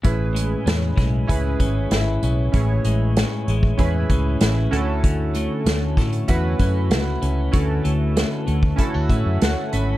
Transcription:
<<
  \new Staff \with { instrumentName = "Synth keys" } { \time 4/4 \key a \major \tempo 4 = 96 << { r1 | r1 | r1 | r2 r8 e''8 fis''8 b''8 | } \\ { <cis' e' gis' b'>4. r8 <cis' e' gis' b'>4. r8 | <cis' e' gis' cis''>4. r8 <cis' e' gis' b'>4. <cis' e' fis' a'>8~ | <cis' e' fis' a'>4 r4 <cis' e' fis' b'>4. r8 | <cis' e' fis' a'>4. r8 <cis' e' fis' a'>4. r8 | } >> }
  \new Staff \with { instrumentName = "Clean electric guitar" } { \time 4/4 \key a \major a,8 gis8 cis'8 gis8 e'8 cis'8 e'8 cis'8 | a,8 gis8 cis'8 gis8 e'8 cis'8 e'8 d8 | d8 a8 cis'8 a8 fis'8 cis'8 fis'8 cis'8 | d8 a8 cis'8 a8 e'16 fis'16 cis'8 fis'8 cis'8 | }
  \new Staff \with { instrumentName = "Fingered electric bass" } { \clef bass \time 4/4 \key a \major a,,4 e,8 b,,8 cis,8 gis,,8 gis,,8 b,,8 | a,,8 a,,8. r16 a,,8 e,8 cis,8 a,,8 d,8~ | d,4 d,8 a,8 e,8 fis,8 cis,8 cis,8 | d,8 d,8. r16 d,8 r16 d,16 a,16 fis,16 d,16 r16 gis,,8 | }
  \new DrumStaff \with { instrumentName = "Drums" } \drummode { \time 4/4 <hh bd>8 hh8 <hh sn>8 <hh bd sn>8 <hh bd>8 <hh bd>8 <hh sn>8 hh8 | <hh bd>8 hh8 <hh sn>8 hh16 bd16 <hh bd>8 <hh bd>8 <hh sn>8 hh8 | <hh bd>8 hh8 <hh sn>8 <hh bd sn>16 hh16 <hh bd>8 <hh bd>8 <hh sn>8 hh8 | <hh bd>8 hh8 <hh sn>8 hh16 bd16 <hh bd>8 <hh bd>8 <hh sn>8 hh8 | }
>>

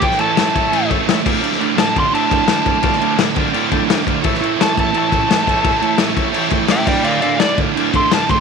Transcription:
<<
  \new Staff \with { instrumentName = "Electric slide guitar" } { \time 4/4 \key d \minor \tempo 4 = 171 g''8 a''2 r4. | r4 a''8 c'''8 a''2~ | a''4 r2. | r4 a''8 a''8 a''2~ |
a''4 r2 <e'' g''>8 <d'' g''>8 | <d'' f''>8 <d'' f''>8 d''8 r4 c'''8 a''8 c'''8 | }
  \new Staff \with { instrumentName = "Transistor combo organ" } { \time 4/4 \key d \minor << { r1 | r1 | r4. a''16 g''16 r8 a''8 f''8 f''8 | r1 |
r1 | r1 | } \\ { <a' cis'' g''>8 <a' cis'' e''>8 <a' cis'' e''>8 <a' cis'' e''>8 <a' cis'' e''>8 <a' cis'' e''>8 <a' cis'' e''>8 <a' d'' f''>8~ | <a' d'' f''>8 <a' d'' f''>8 <a' d'' f''>8 <a' d'' f''>8 <a' d'' e''>8 <a' d'' f''>8 <a' d'' f''>8 <a' d'' f''>8 | <a' d'' f''>8 <a' d'' f''>8 <a' d'' f''>8 <a' d'' f''>8 <a' d'' f''>8 <a' d'' g''>8 <a' d''>8 <a' d''>8 | <a' cis'' e''>8 <a' cis'' e''>8 <a' cis'' e''>8 <a' cis'' e''>8 <a' cis'' e''>8 <a' cis'' e''>8 <a' cis'' e''>8 <a' cis'' e''>8 |
<a' cis'' e''>8 <a' cis'' e''>8 <a' cis'' e''>8 <a' cis'' e''>8 <a' cis'' g''>8 <a' cis'' g''>8 <a' cis'' e''>8 <a' d'' f''>8~ | <a' d'' f''>8 <a' d'' e''>8 <a' d'' f''>8 <a' d'' f''>8 <a' d'' f''>8 <a' d'' e''>8 <a' d'' f''>8 <a' d'' g''>8 | } >> }
  \new Staff \with { instrumentName = "Distorted electric guitar" } { \clef bass \time 4/4 \key d \minor <a, e a>8 <a, e a>8 <a, e a>8 <a, e a>8 <a, e a>8 <a, e a>8 <a, e a>8 <d, a, d>8 | <d, a, d>8 <d, a, d>8 <d, a, d>8 <d, a, d>8 <d, a, d>8 <d, a, d>8 <d, a, d>8 <d, a, d>8 | <d, a, d>8 <d, a, d>8 <d, a, d>8 <d, a, d>8 <d, a, d>8 <d, a, d>8 <d, a, d>8 <d, a, d>8 | <a, e a>8 <a, e a>8 <a, e a>8 <a, e a>8 <a, e a>8 <a, e a>8 <a, e a>8 <a, e a>8 |
<a, e a>8 <a, e a>8 <a, e a>8 <a, e a>8 <a, e a>8 <a, e a>8 <a, e a>8 <d, a, d>8 | <d, a, d>8 <d, a, d>8 <d, a, d>8 <d, a, d>8 <d, a, d>8 <d, a, d>8 <d, a, d>8 <d, a, d>8 | }
  \new DrumStaff \with { instrumentName = "Drums" } \drummode { \time 4/4 <cymc bd>16 sn16 cymc8 <cymc sn>8 <cymc bd>8 cymc8 <cymc bd>8 <cymc sn>8 <cymc bd>8 | cymc16 sn16 cymc8 <cymc sn>8 <cymc bd>8 cymc8 <cymc bd>8 <cymc sn>8 <cymc bd>8 | <cymc bd>16 sn16 cymc8 <cymc sn>8 <cymc bd>8 cymc8 <cymc bd>8 <cymc sn>8 <cymc bd>8 | <cymc bd>16 sn16 cymc8 <cymc sn>8 <cymc bd>8 cymc8 <cymc bd>8 <cymc sn>8 <cymc bd>8 |
<cymc bd>8 cymc8 <cymc sn>8 <cymc bd>8 cymc8 <cymc bd>8 <cymc sn>8 <cymc bd>8 | cymc8 cymc8 <cymc sn>8 <cymc bd>8 cymc8 <cymc bd>8 <cymc sn>8 <cymc bd>8 | }
>>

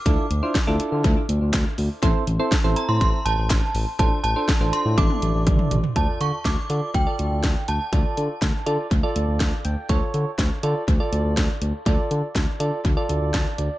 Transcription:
<<
  \new Staff \with { instrumentName = "Synth bell" } { \time 4/4 \key a \phrygian \tempo 4 = 122 d'''4 r2. | r4. bes''16 c'''16 c'''8 a''4. | a''8 a''4 c'''8 d'''4 r4 | \key d \minor a''8 cis'''8 d'''4 g''4. a''8~ |
a''4. r2 r8 | r1 | r1 | }
  \new Staff \with { instrumentName = "Synth keys" } { \time 4/4 \key a \phrygian << { r1 | r1 | r1 | \key d \minor r1 |
r2. d''8 g''8 | r1 | r2. a''8 d''8 | } \\ { <d' e' f' a'>8 r16 <d' e' f' c''>16 r16 <d' e' f' a'>4 r4. r16 | <c' e' a' c''>8 r16 <c' e' a' c''>16 r16 <c' e' a' c''>4 r4. r16 | <d' f' a' c''>8 r16 <d' f' a' c''>16 r16 <d' f' a' c''>8. <d' e' a' d''>4. r8 | <f' a' d''>8. r8. <f' a' d''>8 r16 <f' a' d''>4 r8. |
<f' a' d''>8. r8. <f' a' d''>8 r16 <f' a' d''>4 r8. | <f' a' cis''>8. r8. <f' a' d''>8 r16 <f' a' d''>4 r8. | <f' a' d''>8. r8. <f' a' d''>8 r16 <f' a' d''>4 r8. | } >> }
  \new Staff \with { instrumentName = "Analog synth bass" } { \clef bass \time 4/4 \key a \phrygian d,16 r16 d,16 r8 d,16 r16 d16 d,16 r16 d,16 d,16 d,16 r16 d,16 r16 | a,,16 r16 a,,16 r8 a,,16 r16 a,16 a,,16 r16 a,,16 a,,16 a,,16 r16 a,,16 r16 | a,,16 r16 a,,16 r8 a,,16 r16 a,16 a,,16 r16 a,,16 a,,16 a,,16 r16 a,,16 r16 | \key d \minor d,16 r16 d16 r16 d,16 r16 d16 r16 d,16 r16 d,16 d,16 d,16 r16 d,16 r16 |
d,16 r16 d16 r16 d,16 r16 d16 r16 d,16 r16 d,16 d,16 d,16 r16 d,16 r16 | d,16 r16 d16 r16 d,16 r16 d16 r16 d,16 r16 d,16 d,16 d,16 r16 d,16 r16 | d,16 r16 d16 r16 d,16 r16 d16 r16 d,16 r16 d,16 d,16 d,16 r16 d,16 r16 | }
  \new DrumStaff \with { instrumentName = "Drums" } \drummode { \time 4/4 <hh bd>8 hh8 <hh bd sn>8 hh8 <hh bd>8 hh8 <hc hh bd sn>8 hho8 | <hh bd>8 hh8 <hh bd sn>8 hh8 <hh bd>8 hh8 <hc hh bd sn>8 hho8 | <hh bd>8 hh8 <hh bd sn>8 hh8 <hh bd tommh>16 tommh16 hh8 <hh bd toml>16 toml16 <hh tomfh>16 tomfh16 | <hh bd>8 hh8 <hh bd sn>8 hh8 <hh bd>8 hh8 <hh bd sn>8 hh8 |
<hh bd>8 hh8 <hh bd sn>8 hh8 <hh bd>8 hh8 <hh bd sn>8 hh8 | <hh bd>8 hh8 <hh bd sn>8 hh8 <hh bd>8 hh8 <hh bd sn>8 hh8 | <hh bd>8 hh8 <hh bd sn>8 hh8 <hh bd>8 hh8 <hh bd sn>8 hh8 | }
>>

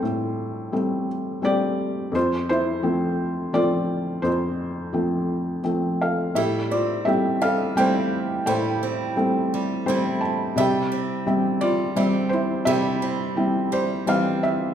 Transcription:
<<
  \new Staff \with { instrumentName = "Felt piano" } { \time 3/4 \key f \major \tempo 4 = 86 << { a'4. r8 d''4 | c''8 c''4. d''4 | c''2 r8 f''8 | e''8 d''8 e''8 f''8 g''4 |
g''4 r4 c''8 a''8 | e''4 r8 d''4 c''8 | e''4. c''8 f''8 e''8 | } \\ { c'4. r8 g'4 | f'8 e'4. f'4 | f'2 r8 a'8 | g'8 f'8 g'8 a'8 c''4 |
c''4 r2 | g'4 r8 f'4 e'8 | g'2~ g'8 r8 | } >> }
  \new Staff \with { instrumentName = "Felt piano" } { \time 3/4 \key f \major a,4 <g a c'>4 <g a c'>4 | f,4 <f a c'>4 <f a c'>4 | f,4 <f a c'>4 <f a c'>4 | a,4 <g a c'>4 <g a c'>4 |
a,4 <g a c'>4 <g a c'>4 | c4 <g c' e''>4 <g c' e''>4 | c4 <g c' e'>4 <e g c'>4 | }
  \new Staff \with { instrumentName = "Steel-string acoustic guitar" } { \time 3/4 \key f \major r2. | r2. | r2. | <g e'>8 c'4 g8 <g c' e'>4 |
<g e'>8 c'4 g8 <g c' e'>4 | g8 c'4 g8 <g c'>4 | <g e'>8 c'4 g8 <g c'>4 | }
>>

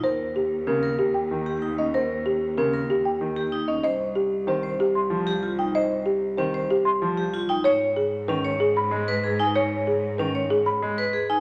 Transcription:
<<
  \new Staff \with { instrumentName = "Marimba" } { \time 6/4 \key ees \mixolydian \tempo 4 = 189 c''8 r8 g'8 r8 bes'8 r8 g'8 g''8 r4. ees''8 | c''8 r8 g'8 r8 bes'8 r8 g'8 g''8 r4. ees''8 | ees''8 r8 g'8 r8 c''8 r8 g'8 c'''8 r4. g''8 | ees''8 r8 g'8 r8 c''8 r8 g'8 c'''8 r4. g''8 |
des''8 r8 aes'8 r8 ces''8 r8 aes'8 ces'''8 r4. aes''8 | des''8 r8 aes'8 r8 ces''8 r8 aes'8 ces'''8 r4. aes''8 | }
  \new Staff \with { instrumentName = "Vibraphone" } { \time 6/4 \key ees \mixolydian bes'8 r4. c'8 bes'8 r4. g'8 ees'8 des'8 | bes'8 r4. c'8 bes'8 r4. g'8 ees'8 des'8 | c''8 r4. c'8 c''8 r4. g'8 f'8 ees'8 | c''8 r4. c'8 c''8 r4. g'8 f'8 ees'8 |
des''8 r4. des'8 des''8 r4. ces''8 aes'8 ees'8 | des''8 r4. des'8 des''8 r4. ces''8 aes'8 ees'8 | }
  \new Staff \with { instrumentName = "Grand piano" } { \clef bass \time 6/4 \key ees \mixolydian r2 des8 r4. ees8 r4. | r2 des8 r4. ees8 r4. | r2 ees8 r4. f8 r4. | r2 ees8 r4. f8 r4. |
r2 ees8 r4. aes8 r4. | r2 ees8 r4. aes8 r4. | }
  \new Staff \with { instrumentName = "Cello" } { \clef bass \time 6/4 \key ees \mixolydian ees,1.~ | ees,1. | c,1.~ | c,1. |
aes,1.~ | aes,1. | }
>>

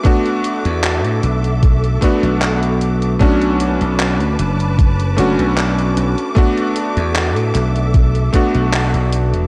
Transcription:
<<
  \new Staff \with { instrumentName = "String section" } { \time 4/4 \key e \dorian \tempo 4 = 76 << { d'''1 | d'''1~ | d'''1 | } \\ { <a' e''>1 | <b' a''>1 | <a' e''>1 | } >> }
  \new Staff \with { instrumentName = "Electric grand piano" } { \time 4/4 \key e \dorian <a b d' fis'>2~ <a b d' fis'>8 <a b d' fis'>4. | <a cis' d' fis'>2~ <a cis' d' fis'>8 <a cis' d' fis'>4. | <a b d' fis'>2~ <a b d' fis'>8 <a b d' fis'>4. | }
  \new Staff \with { instrumentName = "Slap bass" } { \clef bass \time 4/4 \key e \dorian r8. e,8 a,16 b,,4 r16 b,,4~ b,,16 | b,,8. b,,8 d,16 fis,,4 fis,,16 b,,8. b,,16 r16 | r8. e,8 a,16 b,,4 r16 b,,8 b,,8 e,,16 | }
  \new DrumStaff \with { instrumentName = "Drums" } \drummode { \time 4/4 <hh bd>16 hh16 hh16 hh16 <hc hh>16 hh16 hh16 hh16 <hh bd>16 hh16 <hh bd>16 hh16 <hc hh>16 hh16 hh16 hh16 | <hh bd>16 hh16 hh16 hh16 <hc hh>16 hh16 hh16 hh16 <hh bd>16 hh16 hh16 hh16 <hc hh>16 hh16 hh16 hh16 | <hh bd>16 hh16 hh16 hh16 <hc hh>16 hh16 <hc hh>16 hh16 <hh bd>16 hh16 <hh bd>16 hh16 <hc hh>16 hh16 hh16 hh16 | }
>>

